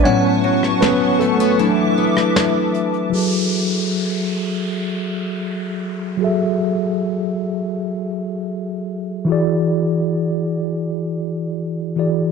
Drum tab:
HH |x---x-x-x---x-xx|----------------|----------------|----------------|
SD |---ro------ro---|----------------|----------------|----------------|